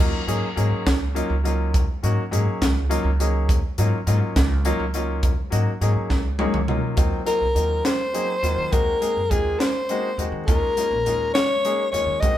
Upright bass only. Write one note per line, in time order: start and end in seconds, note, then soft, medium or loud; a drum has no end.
0.00 0.11 D#2 medium
0.27 0.40 G#2 medium
0.57 0.69 G#2 loud
0.71 muted upright bass stroke soft
0.87 1.23 C#2 medium
1.30 1.74 C#2 medium
1.74 1.86 D#2 medium
2.03 2.15 G#2 medium
2.32 2.44 G#2 loud
2.46 muted upright bass stroke soft
2.62 2.98 C#2 loud
3.04 3.49 C#2 medium
3.49 3.61 D#2 medium
3.78 3.90 G#2 medium
4.07 4.19 G#2 loud
4.22 muted upright bass stroke soft
4.36 4.73 C#2 loud
4.79 5.23 C#2 medium
5.23 5.35 D#2 medium
5.52 5.64 G#2 medium
5.81 5.94 G#2 medium
5.96 muted upright bass stroke soft
6.10 6.47 C#2 loud
6.53 6.78 C#2 medium
6.97 7.10 D#2 medium
7.26 muted upright bass stroke soft
7.41 7.54 C2 medium
7.55 7.80 D#2 medium
8.43 8.55 D#2 medium
8.58 8.70 D#3 medium
8.73 8.85 D#2 medium
9.02 muted upright bass stroke soft
9.17 9.29 F#2 medium
9.31 9.55 D#2 medium
10.17 10.30 D#2 medium
10.32 10.45 D#3 medium
10.48 10.60 D#2 medium
10.76 muted upright bass stroke soft
10.91 11.03 A#1 medium
11.05 11.30 D#2 medium
11.93 12.05 D#2 medium
12.07 12.19 D#3 medium
12.23 12.35 D#2 medium